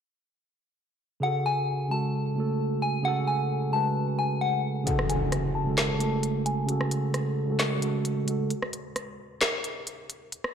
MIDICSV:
0, 0, Header, 1, 5, 480
1, 0, Start_track
1, 0, Key_signature, 3, "minor"
1, 0, Tempo, 454545
1, 1301, Time_signature, 4, 2, 24, 8
1, 11130, End_track
2, 0, Start_track
2, 0, Title_t, "Synth bell"
2, 0, Program_c, 0, 98
2, 1301, Note_on_c, 0, 78, 87
2, 1511, Note_off_c, 0, 78, 0
2, 1540, Note_on_c, 0, 80, 93
2, 1992, Note_off_c, 0, 80, 0
2, 2021, Note_on_c, 0, 81, 71
2, 2939, Note_off_c, 0, 81, 0
2, 2981, Note_on_c, 0, 80, 73
2, 3191, Note_off_c, 0, 80, 0
2, 3220, Note_on_c, 0, 78, 90
2, 3431, Note_off_c, 0, 78, 0
2, 3458, Note_on_c, 0, 80, 79
2, 3910, Note_off_c, 0, 80, 0
2, 3939, Note_on_c, 0, 81, 76
2, 4150, Note_off_c, 0, 81, 0
2, 4421, Note_on_c, 0, 80, 75
2, 4631, Note_off_c, 0, 80, 0
2, 4660, Note_on_c, 0, 78, 79
2, 4870, Note_off_c, 0, 78, 0
2, 5143, Note_on_c, 0, 78, 74
2, 5352, Note_off_c, 0, 78, 0
2, 5380, Note_on_c, 0, 80, 85
2, 5832, Note_off_c, 0, 80, 0
2, 5860, Note_on_c, 0, 81, 75
2, 6778, Note_off_c, 0, 81, 0
2, 6819, Note_on_c, 0, 80, 74
2, 7030, Note_off_c, 0, 80, 0
2, 11130, End_track
3, 0, Start_track
3, 0, Title_t, "Tine electric piano"
3, 0, Program_c, 1, 4
3, 1268, Note_on_c, 1, 49, 91
3, 1289, Note_on_c, 1, 68, 90
3, 1309, Note_on_c, 1, 66, 83
3, 1329, Note_on_c, 1, 69, 99
3, 1487, Control_c, 1, 64, 127
3, 1740, Note_off_c, 1, 49, 0
3, 1750, Note_off_c, 1, 68, 0
3, 1760, Note_off_c, 1, 66, 0
3, 1770, Note_off_c, 1, 69, 0
3, 1988, Note_on_c, 1, 49, 70
3, 2009, Note_on_c, 1, 56, 64
3, 2029, Note_on_c, 1, 66, 65
3, 2048, Note_on_c, 1, 69, 72
3, 2311, Note_off_c, 1, 49, 0
3, 2321, Note_off_c, 1, 56, 0
3, 2331, Note_off_c, 1, 66, 0
3, 2341, Note_off_c, 1, 69, 0
3, 2474, Note_on_c, 1, 49, 68
3, 2494, Note_on_c, 1, 57, 59
3, 2514, Note_on_c, 1, 66, 62
3, 2534, Note_on_c, 1, 69, 80
3, 2943, Note_off_c, 1, 49, 0
3, 2953, Note_off_c, 1, 57, 0
3, 2963, Note_off_c, 1, 66, 0
3, 2973, Note_off_c, 1, 69, 0
3, 3189, Note_on_c, 1, 49, 92
3, 3209, Note_on_c, 1, 68, 87
3, 3229, Note_on_c, 1, 66, 86
3, 3249, Note_on_c, 1, 69, 115
3, 3660, Note_off_c, 1, 49, 0
3, 3670, Note_off_c, 1, 68, 0
3, 3680, Note_off_c, 1, 66, 0
3, 3690, Note_off_c, 1, 69, 0
3, 3911, Note_on_c, 1, 49, 71
3, 3932, Note_on_c, 1, 56, 62
3, 3952, Note_on_c, 1, 66, 65
3, 3972, Note_on_c, 1, 71, 84
3, 4538, Note_off_c, 1, 49, 0
3, 4548, Note_off_c, 1, 56, 0
3, 4558, Note_off_c, 1, 66, 0
3, 4568, Note_off_c, 1, 71, 0
3, 5110, Note_on_c, 1, 49, 98
3, 5130, Note_on_c, 1, 68, 96
3, 5150, Note_on_c, 1, 66, 86
3, 5156, Control_c, 1, 64, 0
3, 5170, Note_on_c, 1, 69, 110
3, 5329, Control_c, 1, 64, 127
3, 5658, Note_off_c, 1, 49, 0
3, 5668, Note_off_c, 1, 68, 0
3, 5678, Note_off_c, 1, 66, 0
3, 5688, Note_off_c, 1, 69, 0
3, 5955, Note_on_c, 1, 49, 74
3, 5975, Note_on_c, 1, 56, 73
3, 5995, Note_on_c, 1, 66, 68
3, 6015, Note_on_c, 1, 69, 84
3, 6198, Note_off_c, 1, 49, 0
3, 6207, Note_off_c, 1, 56, 0
3, 6218, Note_off_c, 1, 66, 0
3, 6228, Note_off_c, 1, 69, 0
3, 6311, Note_on_c, 1, 49, 69
3, 6331, Note_on_c, 1, 57, 63
3, 6351, Note_on_c, 1, 66, 65
3, 6372, Note_on_c, 1, 69, 78
3, 6782, Note_off_c, 1, 49, 0
3, 6792, Note_off_c, 1, 57, 0
3, 6802, Note_off_c, 1, 66, 0
3, 6812, Note_off_c, 1, 69, 0
3, 7033, Note_on_c, 1, 49, 98
3, 7052, Note_on_c, 1, 68, 85
3, 7073, Note_on_c, 1, 66, 91
3, 7093, Note_on_c, 1, 69, 103
3, 7579, Note_off_c, 1, 49, 0
3, 7589, Note_off_c, 1, 68, 0
3, 7599, Note_off_c, 1, 66, 0
3, 7609, Note_off_c, 1, 69, 0
3, 7878, Note_on_c, 1, 49, 73
3, 7897, Note_on_c, 1, 56, 68
3, 7918, Note_on_c, 1, 66, 73
3, 7938, Note_on_c, 1, 69, 88
3, 8119, Note_off_c, 1, 49, 0
3, 8129, Note_off_c, 1, 56, 0
3, 8139, Note_off_c, 1, 66, 0
3, 8149, Note_off_c, 1, 69, 0
3, 8230, Note_on_c, 1, 49, 79
3, 8250, Note_on_c, 1, 56, 68
3, 8270, Note_on_c, 1, 66, 70
3, 8290, Note_on_c, 1, 69, 85
3, 8552, Note_off_c, 1, 49, 0
3, 8562, Note_off_c, 1, 56, 0
3, 8572, Note_off_c, 1, 66, 0
3, 8582, Note_off_c, 1, 69, 0
3, 8710, Note_on_c, 1, 49, 65
3, 8730, Note_on_c, 1, 56, 64
3, 8750, Note_on_c, 1, 66, 65
3, 8770, Note_on_c, 1, 69, 73
3, 8882, Note_off_c, 1, 49, 0
3, 8892, Note_off_c, 1, 56, 0
3, 8902, Note_off_c, 1, 66, 0
3, 8912, Note_off_c, 1, 69, 0
3, 8996, Control_c, 1, 64, 0
3, 9152, Control_c, 1, 64, 127
3, 10914, Control_c, 1, 64, 0
3, 11130, End_track
4, 0, Start_track
4, 0, Title_t, "Impact"
4, 0, Program_c, 2, 103
4, 5140, Note_on_c, 2, 60, 85
4, 7061, Note_off_c, 2, 60, 0
4, 11130, End_track
5, 0, Start_track
5, 0, Title_t, "Drums"
5, 5141, Note_on_c, 9, 42, 68
5, 5246, Note_off_c, 9, 42, 0
5, 5268, Note_on_c, 9, 37, 91
5, 5373, Note_off_c, 9, 37, 0
5, 5381, Note_on_c, 9, 42, 79
5, 5486, Note_off_c, 9, 42, 0
5, 5620, Note_on_c, 9, 37, 72
5, 5620, Note_on_c, 9, 42, 83
5, 5726, Note_off_c, 9, 37, 0
5, 5726, Note_off_c, 9, 42, 0
5, 6100, Note_on_c, 9, 38, 117
5, 6100, Note_on_c, 9, 42, 88
5, 6101, Note_on_c, 9, 39, 95
5, 6206, Note_off_c, 9, 38, 0
5, 6206, Note_off_c, 9, 39, 0
5, 6206, Note_off_c, 9, 42, 0
5, 6341, Note_on_c, 9, 42, 73
5, 6446, Note_off_c, 9, 42, 0
5, 6581, Note_on_c, 9, 42, 75
5, 6686, Note_off_c, 9, 42, 0
5, 6821, Note_on_c, 9, 42, 72
5, 6926, Note_off_c, 9, 42, 0
5, 7061, Note_on_c, 9, 42, 68
5, 7166, Note_off_c, 9, 42, 0
5, 7188, Note_on_c, 9, 37, 84
5, 7294, Note_off_c, 9, 37, 0
5, 7301, Note_on_c, 9, 42, 77
5, 7406, Note_off_c, 9, 42, 0
5, 7541, Note_on_c, 9, 37, 75
5, 7541, Note_on_c, 9, 42, 87
5, 7647, Note_off_c, 9, 37, 0
5, 7647, Note_off_c, 9, 42, 0
5, 8021, Note_on_c, 9, 38, 121
5, 8021, Note_on_c, 9, 39, 95
5, 8021, Note_on_c, 9, 42, 86
5, 8126, Note_off_c, 9, 38, 0
5, 8126, Note_off_c, 9, 42, 0
5, 8127, Note_off_c, 9, 39, 0
5, 8261, Note_on_c, 9, 42, 76
5, 8366, Note_off_c, 9, 42, 0
5, 8501, Note_on_c, 9, 42, 73
5, 8606, Note_off_c, 9, 42, 0
5, 8741, Note_on_c, 9, 42, 72
5, 8846, Note_off_c, 9, 42, 0
5, 8981, Note_on_c, 9, 42, 67
5, 9086, Note_off_c, 9, 42, 0
5, 9108, Note_on_c, 9, 37, 88
5, 9214, Note_off_c, 9, 37, 0
5, 9220, Note_on_c, 9, 42, 80
5, 9326, Note_off_c, 9, 42, 0
5, 9461, Note_on_c, 9, 37, 76
5, 9461, Note_on_c, 9, 42, 84
5, 9566, Note_off_c, 9, 37, 0
5, 9566, Note_off_c, 9, 42, 0
5, 9941, Note_on_c, 9, 38, 122
5, 9941, Note_on_c, 9, 39, 95
5, 9941, Note_on_c, 9, 42, 86
5, 10046, Note_off_c, 9, 38, 0
5, 10046, Note_off_c, 9, 39, 0
5, 10046, Note_off_c, 9, 42, 0
5, 10181, Note_on_c, 9, 42, 75
5, 10287, Note_off_c, 9, 42, 0
5, 10421, Note_on_c, 9, 42, 74
5, 10527, Note_off_c, 9, 42, 0
5, 10661, Note_on_c, 9, 42, 72
5, 10767, Note_off_c, 9, 42, 0
5, 10901, Note_on_c, 9, 42, 67
5, 11007, Note_off_c, 9, 42, 0
5, 11028, Note_on_c, 9, 37, 87
5, 11130, Note_off_c, 9, 37, 0
5, 11130, End_track
0, 0, End_of_file